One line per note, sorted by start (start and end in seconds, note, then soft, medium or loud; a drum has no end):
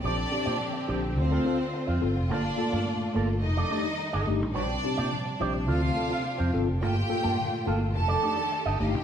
0.03 0.24 A#1 medium
0.03 0.16 A#2 medium
0.03 2.28 D3 medium
0.03 0.16 F3 medium
0.03 2.28 C4 medium
0.03 0.86 D4 medium
0.03 0.19 G4 medium
0.03 1.16 G4 medium
0.03 0.17 C5 medium
0.03 0.86 D5 loud
0.03 0.16 D5 medium
0.18 muted clean electric guitar stroke medium
0.31 0.44 C4 medium
0.31 0.44 D4 medium
0.31 0.45 G4 loud
0.31 muted clean electric guitar stroke soft
0.46 0.56 A#2 medium
0.46 0.52 D4 soft
0.46 0.52 G4 soft
0.46 0.58 G4 soft
0.46 0.58 C5 medium
0.46 0.57 D5 medium
0.60 0.73 A#2 soft
0.60 0.73 F3 medium
0.73 muted clean electric guitar stroke medium
0.88 1.18 A#1 medium
0.88 1.01 C4 medium
0.88 1.01 D4 medium
0.88 1.03 G4 medium
0.88 1.01 G4 medium
0.88 1.02 C5 medium
0.88 1.01 D5 medium
1.03 1.08 D4 soft
1.03 1.08 G4 soft
1.03 muted clean electric guitar stroke soft
1.16 1.37 D2 loud
1.16 2.00 C4 medium
1.16 1.23 F4 soft
1.16 3.41 F4 medium
1.16 1.23 A4 soft
1.16 2.00 C5 loud
1.16 muted clean electric guitar stroke soft
1.31 1.44 D3 medium
1.31 1.44 A3 medium
1.31 1.44 C4 medium
1.31 1.45 F4 medium
1.31 1.45 A4 medium
1.45 1.58 C4 medium
1.45 1.57 C4 medium
1.45 1.58 F4 medium
1.45 1.57 F4 medium
1.45 1.58 A4 medium
1.45 1.57 A4 medium
1.60 muted clean electric guitar stroke soft
1.73 muted clean electric guitar stroke soft
1.87 1.98 F2 medium
1.87 2.01 C4 medium
1.87 2.01 F4 medium
1.87 2.02 C5 medium
2.01 2.16 G1 medium
2.01 2.14 C4 medium
2.01 2.14 F4 medium
2.01 2.14 A4 medium
2.01 muted clean electric guitar stroke soft
2.16 2.31 F1 loud
2.16 muted clean electric guitar stroke soft
2.29 2.50 G1 loud
2.29 2.42 G2 medium
2.29 3.42 A#2 medium
2.29 2.42 D3 soft
2.29 4.54 A3 medium
2.29 2.45 A#3 medium
2.29 3.13 D4 medium
2.29 2.44 F4 medium
2.29 2.43 A4 medium
2.29 3.13 D5 medium
2.44 muted clean electric guitar stroke soft
2.57 2.71 A#3 medium
2.57 2.71 F4 medium
2.57 2.71 A4 medium
2.57 muted clean electric guitar stroke soft
2.72 2.83 G2 medium
2.72 2.84 A#3 medium
2.72 2.78 F4 soft
2.72 2.84 F4 medium
2.72 2.84 A4 medium
2.72 2.78 A4 soft
2.87 2.99 G2 medium
2.87 2.99 D3 medium
3.01 muted clean electric guitar stroke soft
3.14 3.44 G1 medium
3.14 3.27 A#3 medium
3.14 3.30 A#3 medium
3.14 3.27 F4 medium
3.14 3.28 F4 medium
3.14 3.28 A4 medium
3.29 3.35 F4 soft
3.29 3.34 A4 soft
3.29 muted clean electric guitar stroke soft
3.41 3.63 F1 medium
3.41 4.55 D#3 medium
3.41 5.66 G3 medium
3.41 4.25 D#4 medium
3.41 4.54 D#4 medium
3.41 3.49 D#4 soft
3.41 3.49 G4 soft
3.41 4.25 D#5 loud
3.41 muted clean electric guitar stroke soft
3.57 3.70 F3 medium
3.57 3.69 D#4 medium
3.57 3.70 A4 medium
3.57 3.70 D5 medium
3.70 3.84 A3 medium
3.70 3.84 D4 medium
3.70 3.82 D#4 medium
3.70 3.84 D#4 medium
3.70 3.84 G4 medium
3.70 3.83 A4 medium
3.70 3.83 D5 medium
3.85 muted clean electric guitar stroke soft
3.99 muted clean electric guitar stroke soft
4.13 4.24 G1 medium
4.13 4.26 D#4 medium
4.13 4.26 A4 medium
4.13 4.28 D#5 medium
4.27 4.42 G1 medium
4.27 4.40 A3 medium
4.27 4.41 D4 medium
4.27 4.41 D#4 medium
4.27 4.41 G4 loud
4.27 muted clean electric guitar stroke soft
4.40 4.56 A1 loud
4.40 muted clean electric guitar stroke soft
4.54 4.76 A#1 loud
4.54 4.69 A#2 medium
4.54 6.80 C3 medium
4.54 4.69 F3 soft
4.54 5.39 D4 medium
4.54 6.80 D4 medium
4.54 4.75 G4 medium
4.54 4.69 C5 medium
4.54 5.38 D5 loud
4.54 4.68 D5 medium
4.70 muted clean electric guitar stroke soft
4.82 4.97 C4 medium
4.82 4.97 D4 medium
4.82 4.97 G4 loud
4.82 muted clean electric guitar stroke soft
4.97 5.08 A#2 medium
4.97 5.04 D4 soft
4.97 5.04 G4 soft
4.97 5.10 G4 soft
4.97 5.10 C5 medium
4.97 5.10 D5 medium
5.12 5.25 A#2 medium
5.12 5.25 F3 medium
5.25 muted clean electric guitar stroke soft
5.40 5.69 A#1 medium
5.40 5.53 C4 medium
5.40 5.53 D4 medium
5.40 5.53 G4 medium
5.40 5.56 G4 medium
5.40 5.53 C5 medium
5.40 5.53 D5 medium
5.54 5.60 D4 soft
5.54 5.60 G4 soft
5.54 muted clean electric guitar stroke soft
5.67 5.89 D2 loud
5.67 6.81 F3 medium
5.67 5.83 C4 medium
5.67 5.81 F4 medium
5.67 5.74 F4 soft
5.67 6.52 F4 medium
5.67 5.74 A4 soft
5.67 5.80 A4 medium
5.67 6.52 F5 loud
5.82 5.96 D3 medium
5.82 5.96 A3 medium
5.82 muted clean electric guitar stroke medium
5.95 6.10 C4 medium
5.95 6.10 F4 medium
5.95 6.10 A4 medium
5.95 muted clean electric guitar stroke soft
6.10 6.23 C4 soft
6.10 6.23 F4 medium
6.10 6.23 A4 medium
6.24 muted clean electric guitar stroke soft
6.38 6.50 F2 medium
6.38 6.51 C4 medium
6.38 6.51 F4 medium
6.38 6.52 C5 medium
6.52 6.68 G1 medium
6.52 6.67 C4 medium
6.52 6.67 F4 medium
6.52 6.67 A4 loud
6.52 muted clean electric guitar stroke soft
6.67 6.82 F1 medium
6.67 muted clean electric guitar stroke soft
6.81 7.02 G1 loud
6.81 6.95 G2 medium
6.81 7.94 A#2 medium
6.81 6.95 D3 medium
6.81 9.04 A3 medium
6.81 6.97 A#3 medium
6.81 7.94 F4 medium
6.81 6.95 F4 medium
6.81 7.65 G4 medium
6.81 6.95 A4 medium
6.81 7.65 G5 loud
6.96 muted clean electric guitar stroke medium
7.09 7.23 A#3 medium
7.09 7.23 F4 medium
7.09 7.23 A4 loud
7.09 muted clean electric guitar stroke soft
7.23 7.34 G2 medium
7.23 7.36 A#3 medium
7.23 7.36 F4 soft
7.23 7.30 F4 soft
7.23 7.35 A4 medium
7.23 7.30 A4 soft
7.39 7.52 G2 medium
7.39 7.52 D3 medium
7.51 muted clean electric guitar stroke soft
7.66 7.95 G1 medium
7.66 7.82 A#3 medium
7.66 7.80 A#3 medium
7.66 7.80 F4 medium
7.66 7.80 A4 medium
7.66 7.79 A4 medium
7.80 7.87 F4 soft
7.80 7.87 A4 soft
7.80 muted clean electric guitar stroke soft
7.94 8.15 F1 medium
7.94 9.04 D#3 medium
7.94 9.04 D4 medium
7.94 8.01 D#4 soft
7.94 9.04 G4 medium
7.94 8.01 G4 soft
7.94 8.72 A4 medium
7.94 8.72 A5 loud
7.94 muted clean electric guitar stroke soft
8.08 8.22 F3 medium
8.08 8.21 D#4 medium
8.08 8.22 A4 medium
8.08 8.22 D5 medium
8.22 8.37 A3 medium
8.22 8.37 D4 medium
8.22 8.35 D#4 medium
8.22 8.37 D#4 medium
8.22 8.37 G4 medium
8.22 8.35 A4 medium
8.22 8.35 D5 medium
8.37 muted clean electric guitar stroke soft
8.52 muted clean electric guitar stroke soft
8.66 8.76 G1 medium
8.66 8.78 D#4 medium
8.66 8.78 A4 medium
8.66 8.80 D#5 medium
8.80 8.95 G1 medium
8.80 8.93 A3 medium
8.80 8.93 D4 medium
8.80 8.87 D#4 medium
8.80 8.93 D#4 medium
8.80 8.93 G4 loud
8.80 8.87 D#5 medium
8.80 muted clean electric guitar stroke soft
8.87 8.94 F4 medium
8.87 8.94 F5 medium
8.94 9.04 A1 medium
8.94 9.01 G4 medium
8.94 9.01 G5 medium
8.94 muted clean electric guitar stroke soft